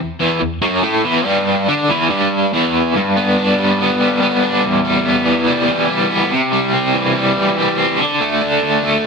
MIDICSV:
0, 0, Header, 1, 2, 480
1, 0, Start_track
1, 0, Key_signature, 1, "minor"
1, 0, Tempo, 421941
1, 1419, Time_signature, 4, 2, 24, 8
1, 10313, End_track
2, 0, Start_track
2, 0, Title_t, "Overdriven electric guitar"
2, 0, Program_c, 0, 29
2, 0, Note_on_c, 0, 40, 65
2, 165, Note_off_c, 0, 40, 0
2, 224, Note_on_c, 0, 40, 78
2, 225, Note_on_c, 0, 52, 78
2, 449, Note_off_c, 0, 40, 0
2, 454, Note_off_c, 0, 52, 0
2, 463, Note_on_c, 0, 40, 59
2, 652, Note_off_c, 0, 40, 0
2, 701, Note_on_c, 0, 42, 85
2, 705, Note_on_c, 0, 54, 83
2, 932, Note_off_c, 0, 42, 0
2, 934, Note_off_c, 0, 54, 0
2, 937, Note_on_c, 0, 45, 76
2, 945, Note_on_c, 0, 57, 86
2, 1170, Note_off_c, 0, 45, 0
2, 1175, Note_off_c, 0, 57, 0
2, 1183, Note_on_c, 0, 40, 77
2, 1185, Note_on_c, 0, 52, 89
2, 1414, Note_off_c, 0, 40, 0
2, 1414, Note_on_c, 0, 43, 82
2, 1422, Note_off_c, 0, 52, 0
2, 1422, Note_on_c, 0, 55, 96
2, 1891, Note_off_c, 0, 43, 0
2, 1895, Note_off_c, 0, 55, 0
2, 1913, Note_on_c, 0, 50, 77
2, 1921, Note_on_c, 0, 62, 85
2, 2140, Note_off_c, 0, 50, 0
2, 2144, Note_off_c, 0, 62, 0
2, 2148, Note_on_c, 0, 40, 71
2, 2157, Note_on_c, 0, 52, 83
2, 2378, Note_off_c, 0, 40, 0
2, 2383, Note_off_c, 0, 52, 0
2, 2389, Note_on_c, 0, 43, 76
2, 2394, Note_on_c, 0, 55, 81
2, 2859, Note_off_c, 0, 43, 0
2, 2862, Note_off_c, 0, 55, 0
2, 2874, Note_on_c, 0, 40, 78
2, 2878, Note_on_c, 0, 52, 86
2, 3342, Note_off_c, 0, 40, 0
2, 3345, Note_off_c, 0, 52, 0
2, 3363, Note_on_c, 0, 43, 71
2, 3605, Note_on_c, 0, 59, 59
2, 3849, Note_on_c, 0, 62, 65
2, 4087, Note_on_c, 0, 55, 65
2, 4319, Note_off_c, 0, 59, 0
2, 4332, Note_on_c, 0, 59, 69
2, 4553, Note_off_c, 0, 55, 0
2, 4555, Note_off_c, 0, 43, 0
2, 4558, Note_on_c, 0, 55, 63
2, 4788, Note_off_c, 0, 59, 0
2, 4802, Note_on_c, 0, 59, 66
2, 5028, Note_off_c, 0, 62, 0
2, 5042, Note_on_c, 0, 62, 64
2, 5273, Note_off_c, 0, 59, 0
2, 5273, Note_off_c, 0, 62, 0
2, 5279, Note_on_c, 0, 40, 69
2, 5510, Note_off_c, 0, 55, 0
2, 5510, Note_on_c, 0, 55, 59
2, 5749, Note_on_c, 0, 59, 64
2, 5979, Note_on_c, 0, 52, 63
2, 6206, Note_off_c, 0, 55, 0
2, 6220, Note_on_c, 0, 55, 73
2, 6454, Note_off_c, 0, 52, 0
2, 6468, Note_on_c, 0, 52, 64
2, 6470, Note_off_c, 0, 40, 0
2, 6685, Note_off_c, 0, 55, 0
2, 6699, Note_on_c, 0, 55, 62
2, 6926, Note_off_c, 0, 59, 0
2, 6940, Note_on_c, 0, 59, 72
2, 7180, Note_off_c, 0, 55, 0
2, 7180, Note_off_c, 0, 59, 0
2, 7180, Note_on_c, 0, 48, 68
2, 7184, Note_off_c, 0, 52, 0
2, 7422, Note_on_c, 0, 55, 61
2, 7665, Note_on_c, 0, 60, 66
2, 7894, Note_on_c, 0, 52, 66
2, 8122, Note_off_c, 0, 55, 0
2, 8136, Note_on_c, 0, 55, 74
2, 8364, Note_off_c, 0, 52, 0
2, 8377, Note_off_c, 0, 48, 0
2, 8378, Note_on_c, 0, 52, 66
2, 8609, Note_off_c, 0, 55, 0
2, 8623, Note_on_c, 0, 55, 63
2, 8833, Note_off_c, 0, 60, 0
2, 8847, Note_on_c, 0, 60, 66
2, 9082, Note_off_c, 0, 52, 0
2, 9086, Note_on_c, 0, 50, 73
2, 9091, Note_off_c, 0, 60, 0
2, 9098, Note_off_c, 0, 55, 0
2, 9332, Note_on_c, 0, 57, 61
2, 9571, Note_on_c, 0, 62, 72
2, 9800, Note_off_c, 0, 50, 0
2, 9814, Note_on_c, 0, 50, 60
2, 10034, Note_off_c, 0, 57, 0
2, 10048, Note_on_c, 0, 57, 72
2, 10269, Note_off_c, 0, 50, 0
2, 10313, Note_off_c, 0, 57, 0
2, 10313, Note_off_c, 0, 62, 0
2, 10313, End_track
0, 0, End_of_file